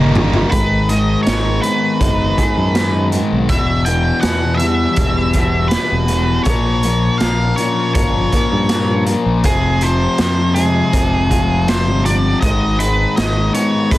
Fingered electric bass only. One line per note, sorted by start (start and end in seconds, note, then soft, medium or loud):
0.00 0.43 G1 medium
0.53 1.14 G#1 medium
1.27 1.58 G#1 medium
2.00 2.32 F#1 medium
2.57 3.19 F#2 medium
3.32 3.47 B1 medium
3.49 4.11 E1 medium
4.23 4.86 E2 medium
4.97 5.75 E1 medium
5.92 6.38 E1 medium
6.46 7.08 A#1 medium
7.21 7.52 A#1 medium
7.95 8.27 G1 medium
8.52 9.14 G2 medium
9.26 9.42 A#1 medium
9.44 10.06 F1 medium
10.19 10.81 F2 medium
10.93 11.87 F1 medium
11.87 12.34 G1 medium
12.42 13.04 G#1 medium
13.18 13.49 G#1 medium
13.91 13.98 F#1 loud